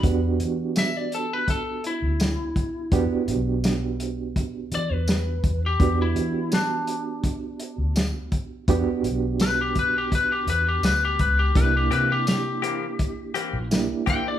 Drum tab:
HH |xxxxxxxx|xxxxxxxx|xxxxxxxx|xxxxxxxx|
TB |--x---x-|--x---x-|--x---x-|--x---x-|
SD |--o---o-|--o---o-|--o---o-|--o---o-|
BD |o---o--o|o---o--o|o---o--o|o--oo--o|

HH |xxxxxxxx|
TB |--x---x-|
SD |--o---o-|
BD |o---o--o|